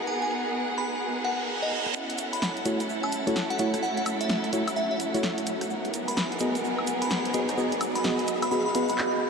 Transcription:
Already playing: B3 D#4 F#4 G#4 A#4 D#5 F#5
0.07 G#5
0.22 G#5
0.31 closed hi-hat
0.78 B5, closed hi-hat
1.01 reverse cymbal
1.24 F#5, closed hi-hat
1.62 D#5
1.72 cross-stick, closed hi-hat
1.86 cross-stick
1.95 C#4 E4 F#4 A4, riser, cabasa
2.10 closed hi-hat
2.18 closed hi-hat, cabasa
2.33 B5, closed hi-hat, cabasa
2.42 B5, snare, cabasa
2.57 A3, closed hi-hat
2.65 A3 E4 F#4 C#5, closed hi-hat, cabasa
2.80 closed hi-hat, cabasa
2.89 cabasa
3.03 A5, high woodblock
3.12 closed hi-hat, cabasa
3.27 A3 E4 F#4 C#5, closed hi-hat, cabasa
3.36 snare, cabasa
3.50 F#5, closed hi-hat
3.59 A3 E4 F#4 C#5 F#5, closed hi-hat, cabasa
3.74 cross-stick, closed hi-hat, cabasa
3.83 F#5, cabasa
3.97 F#5, closed hi-hat
4.06 closed hi-hat, cabasa, high woodblock
4.21 E5, closed hi-hat, cabasa
4.29 E5, snare, cabasa
4.44 closed hi-hat
4.53 A3 E4 F#4 C#5, closed hi-hat, cabasa
4.68 closed hi-hat, cabasa, high woodblock
4.76 E5, cabasa
4.91 E5
5.00 closed hi-hat, cabasa
5.14 A3 E4 F#4 C#5, closed hi-hat, cabasa
5.23 snare, cabasa
5.38 closed hi-hat
5.47 cross-stick, closed hi-hat, cabasa
5.61 cross-stick, closed hi-hat, cabasa
5.70 B3 D#4 F#4 A#4, cabasa
5.85 closed hi-hat
5.94 G#4, closed hi-hat, cabasa
6.08 B5, closed hi-hat, cabasa
6.17 B5, snare, cabasa
6.32 closed hi-hat
6.39 B3 F#4 G#4 D#5, closed hi-hat, cabasa
6.55 closed hi-hat, cabasa
6.64 cabasa
6.79 high woodblock
6.87 closed hi-hat, cabasa
7.02 B5, closed hi-hat, cabasa
7.10 B5, snare, cabasa
7.25 closed hi-hat
7.34 B3 F#4 G#4 D#5, closed hi-hat, cabasa
7.49 cross-stick, closed hi-hat, cabasa
7.57 B3 F#4 G#4 D#5, cabasa
7.72 closed hi-hat
7.81 closed hi-hat, cabasa, high woodblock
7.95 B5, closed hi-hat, cabasa
8.04 B3 F#4 G#4 D#5, snare, cabasa
8.19 closed hi-hat
8.28 closed hi-hat, cabasa
8.42 B5, closed hi-hat, cabasa, high woodblock
8.51 B3 F#4 G#4 D#5 B5, cabasa
8.66 B5
8.75 B3 F#4 G#4 D#5 B5, closed hi-hat, cabasa
8.88 B5, closed hi-hat, cabasa
8.98 clap

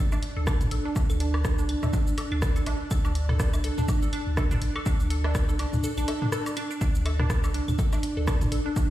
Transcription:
Already playing: D4
0.12 D4, high woodblock, low woodblock, shaker
0.23 closed hi-hat
0.37 D2 A4
0.47 D4, kick, cross-stick, claves, high woodblock, shaker
0.61 closed hi-hat, mid tom, shaker
0.71 A1 A4, closed hi-hat
0.85 D4
0.96 D2, kick, high woodblock, low woodblock, shaker
1.10 A4, claves, shaker
1.20 D4, closed hi-hat
1.34 cross-stick, high woodblock
1.45 A4, kick, cross-stick, shaker
1.58 C2 D4, shaker
1.69 closed hi-hat, claves
1.83 D2 A4, mid tom, high woodblock, low woodblock, shaker
1.93 D4, kick, shaker
2.07 shaker
2.18 A4, closed hi-hat, high woodblock
2.32 D2 D4, claves
2.42 kick, cross-stick, shaker
2.56 A4, closed hi-hat, shaker
2.66 A1 D4, closed hi-hat, high woodblock, low woodblock
2.91 D2 A4, kick, claves, shaker
3.05 D4, high woodblock, shaker
3.15 closed hi-hat
3.29 A4, cross-stick, mid tom
3.40 D4, kick, cross-stick, shaker
3.54 C2, claves, high woodblock, low woodblock, shaker
3.64 A4, closed hi-hat
3.78 D2 D4, mid tom, shaker
3.88 kick, high woodblock, shaker
4.02 A4, shaker
4.13 D4, closed hi-hat, claves
4.27 D2
4.37 A4, kick, cross-stick, high woodblock, low woodblock, shaker
4.51 D4, closed hi-hat, mid tom, shaker
4.62 A1, closed hi-hat
4.75 A4, claves, high woodblock
4.86 D2 D4, kick, shaker
5.00 shaker
5.10 A4, closed hi-hat
5.24 D4, cross-stick, high woodblock, low woodblock
5.35 kick, cross-stick, claves, shaker
5.49 C2 A4, shaker
5.59 D4, closed hi-hat, high woodblock
5.73 D2, mid tom, shaker
5.84 A4, shaker
5.97 A1 D4, claves, shaker
6.08 A4, closed hi-hat, high woodblock, low woodblock
6.22 D4, mid tom
6.32 A4, cross-stick, shaker
6.46 closed hi-hat, high woodblock, shaker
6.57 D4, closed hi-hat, claves
6.71 D4, shaker
6.81 D2 D4, kick, shaker
6.95 shaker
7.06 A4, closed hi-hat, claves, high woodblock, low woodblock
7.19 D4, cross-stick, mid tom
7.30 kick, cross-stick, shaker
7.44 C2 A4, high woodblock, shaker
7.54 D4, closed hi-hat
7.68 D2, mid tom, claves, shaker
7.79 A4, kick, shaker
7.93 D4, high woodblock, low woodblock, shaker
8.03 closed hi-hat
8.17 D2 A4
8.27 D4, kick, cross-stick, claves, high woodblock, shaker
8.41 closed hi-hat, mid tom, shaker
8.52 A1 A4, closed hi-hat
8.66 D4
8.76 D2, kick, high woodblock, low woodblock, shaker

